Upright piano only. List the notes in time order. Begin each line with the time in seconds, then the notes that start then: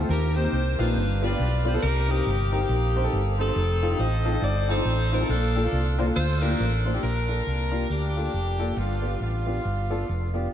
0.01 A3 C4 F4 A4
0.09 D#3
0.35 A#3 C4 D#4 G4
0.44 A#3 C4 D#4 A#4
0.78 A#3 C4 D#4 F4
0.87 A#3 C4 D#4 G4
0.96 G2
1.22 B3 D4 F4 G4
1.30 B3 D4 F4 G4
1.65 B3 D4 F4 G4
1.74 B3 D4 F4 A4
1.83 C3
2.08 C4 D#4 G4 A#4
2.17 C4 D#4 G4 A#4
2.52 C4 D#4 G4 A#4
2.61 C4 D#4 G4 A#4
2.96 C4 D#4 G4 C5
3.04 C4 D#4 G4 A4
3.38 C4 D#4 G4 C5
3.47 C4 D#4 G4 C5
3.82 C4 D#4 F4 A4
3.90 C4 D#4 F4 G4
4.25 C4 D#4 F4 A4
4.32 C4 D#4 F4 A4
4.68 C4 D#4 F4 A4
4.77 C4 D#4 F4 A4
5.12 C4 D#4 F4 C5
5.21 C4 D#4 F4 A4
5.29 A#2
5.56 A#3 D4 F4 A4
5.64 A#3 D4 F4 A4
5.98 A#3 D4 F4 C5
6.06 A#3 D4 F4 A4
6.42 A#3 D4 F4 G4
6.50 A#3 D4 F4 A#4
6.85 A#3 D4 F4 C5
6.94 A#3 D4 F4 G4
7.03 A#2
7.28 A#3 D4 F4 A4
7.71 A#3 D4 F4 G4
8.16 A#3 D4 F4 A4
8.59 A#3 D4 F4 A4
8.77 G2
9.02 B3 D4 F4 G4
9.46 B3 D4 F4 G4
9.90 B3 D4 F4 A4
10.34 B3 D4 F4 G4